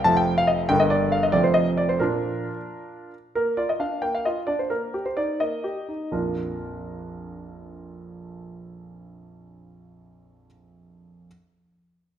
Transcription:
grand piano
0.04 F1 F2 F3 A3 C4 A5
0.17 G5
0.38 F5
0.47 D#5
0.69 G1 G2 D3 G3 A#3 G5
0.80 D#5
0.90 D5
1.12 F5
1.23 D#5
1.32 F1 F2 F3 A3 C4 D5
1.44 C5
1.54 D#5
1.77 D5
1.89 C5
2.00 A#2 A#3 D4 F4 A#4
3.35 A#3 A#4
3.57 F4 D5
3.69 D#5
3.80 D4 F5
4.02 A#3 G5
4.15 F5
4.25 F4 D#5
4.47 D4 D5
4.59 C5
4.70 A#3 A#4
4.94 G4
5.06 C5
5.17 D#4 D5
5.40 A#3 D#5
5.64 G4
5.88 D#4
6.11 A#1 F2 F3 A#3 D4 F4 A#4

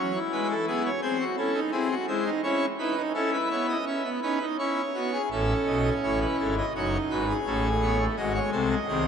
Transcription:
pipe organ
Already playing: F#3 C#4 C#5
0.14 E4
0.32 G#3 B4
0.50 A4
0.67 B3 G#4
0.85 C#5
1.02 C4 G#4 C5
1.20 F#4
1.37 C#4 E4 A4
1.55 D#4
1.71 C4 E4 G#4
1.90 F#4
2.07 G#3 E4 C5
2.25 D#4
2.43 C#4 E4 C#5
2.79 D#4 E4 B4
2.96 D#4
3.14 C#4 E4 A4
3.33 B4
3.50 B3 C#5
3.69 D#5
3.86 C#4 E5
4.04 B3
4.22 C#4 D#4 B4
4.40 D#4
4.59 C#4 E4 C#5
4.95 B3 F#4
5.13 G#4
5.31 A1 A2 C#4 A4 E5
5.67 B1 B2 D#5
6.03 A1 A2 E4 C#5
6.21 B4
6.39 G#1 G#2 A4
6.58 D#5
6.75 F#1 F#2 D#4 F#4 C#5
7.10 G#1 G#2 F#4 B4
7.29 G#4
7.46 A1 A2 C#4 A4
7.82 B3 C#5
8.00 A3
8.17 G#1 G#2 G#3 F#4 D#5
8.34 C#5
8.52 C2 C3 A4 C5
8.70 D#5
8.88 C2 C3 D#3 G#4

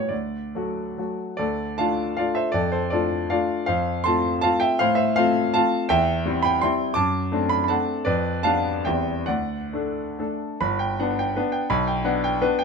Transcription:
grand piano
Already playing: A2 G3 B3 F#4
0.00 C#5
0.09 D2 D5
0.55 F#3 A3 F#4
0.98 F#3 A3 F#4
1.37 D2 A4 D5
1.78 A3 D4 F4 F5 A5
2.17 A3 D4 F4 D5 F5
2.35 C5 E5
2.52 F2 A4 D5
2.72 A4 C5
2.90 A3 D4 F4 A4 D5
3.30 A3 D4 F4 D5 F5
3.66 F2 C5 F5
4.04 A3 C4 F4 A5 C6
4.41 A3 C4 F4 F5 A5
4.60 E5 G5
4.79 A2 C5 F5
4.95 C5 E5
5.16 A3 C4 F4 C5 F5
5.54 A3 C4 F4 F5 A5
5.89 E2 E5 G5
6.25 G3 C4 E4
6.42 G5 B5
6.62 G3 C4 E4 G5 C6
6.94 F#2 A5 D6
7.32 A3 C4 D4
7.49 B5
7.64 B5
7.68 A3 C4 D4 F#5 A5
8.05 F2 B4 D5
8.43 G3 B3 D4 F5 A5
8.85 E2 G3 C4 E4 E5 G5
9.26 D2 D5 F#5
9.73 A3 D4 A4
10.19 A3 D4 A4
10.61 G1 B5
10.79 G5
11.00 B3 D4 F#5
11.19 G5
11.36 B3 D4 B4
11.52 G5
11.70 B1 B5
11.87 G5
12.04 B3 D4 F#5
12.24 G5
12.41 B3 D4 B4
12.59 G5

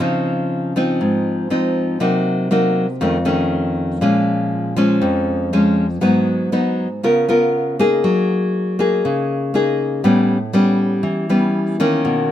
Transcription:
nylon-string guitar
0.00 C#3 F3 C4 D#4
0.76 F3 C4 D#4
1.01 G#2
1.50 F3 C4 D#4
2.00 C3 F#3 A#3 D#4
2.51 F#3 A#3 D#4
3.01 F2 D#3 A3 C#4
3.25 D#3 A3 C#4
4.01 A#2 F3 G#3 C#4
4.76 F3 G#3 C#4
5.02 F2
5.53 F3 G#3 C#4
6.01 G#2 F#3 B3 D#4
6.52 F#3 B3 D#4
7.03 C#3 B3 F4 A#4
7.29 B3 F4 A#4
7.79 A#3 D#4 G#4
8.04 F#3
8.79 A#3 D#4 G#4
9.05 C#3
9.54 A#3 D#4 G#4
10.04 A2 G3 B3 C#4
10.53 G3 B3 C#4
11.03 E3
11.29 G3 B3 C#4
11.80 D#3 A#3 C#4
12.05 B2

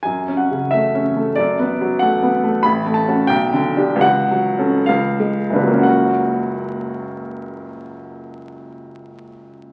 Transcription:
grand piano
0.03 F#2 G#5
0.28 C#4
0.37 F#5
0.51 C#3
0.71 A3 E5
0.95 C#4
1.16 A3
1.36 F#2 D5
1.59 B3
1.81 F#3
1.99 A3 F#5
2.23 B3
2.44 A3
2.63 A1 B5
2.86 A3
2.94 A5
3.08 C#4 F#4
3.27 B1 G5
3.53 D3
3.77 D4 G4
3.96 C#2
4.01 F#5
4.31 F#3
4.59 C#4 A4
4.86 C#2 F5
5.20 G#3
5.50 F#1 D4
5.54 C#2 B4
5.62 F#3
5.67 A#3
5.73 C#4
5.79 F#4 F#5

